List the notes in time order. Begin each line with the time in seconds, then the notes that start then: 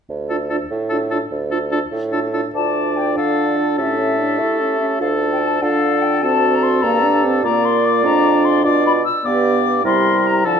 0.09 D2
0.29 D4 F4 A4
0.50 D4 F4 A4
0.71 A2
0.89 D4 F4 A4
1.11 D4 F4 A4
1.31 D2
1.50 D4 F4 A4
1.71 D4 F4 A4
1.92 A2
2.12 D4 F4 A4
2.33 D4 F4 A4
2.54 D2 D4 F4 D5 A5
2.96 G5
3.16 D3 A4 F5
3.56 D5
3.78 A2 C#4 G4 A4 E5
3.98 C#4
4.18 D4
4.39 A3 E4
4.60 C#4
4.79 C#4 E5
5.00 D2 D4 F4 A4 F5
5.32 G5
5.42 A5
5.62 D3 D4 F4 A4 F5
6.02 G5
6.23 D2 C4 F#4 A4 A5
6.55 A#5
6.63 C6
6.82 G2 A#3 G4 A#5
7.04 D4
7.24 C4
7.43 A#2 A#3 F4 D5 A#5
7.65 C6
7.85 D6
8.05 F2 D4 A#5
8.44 C6
8.64 B2 F4 D5 D6
8.86 B5
9.04 E6
9.24 G2 B3 G4 D5 D6
9.84 C3 G3 E4 A#4 C6
10.26 A#5
10.45 D3 F3 F4 A4 A5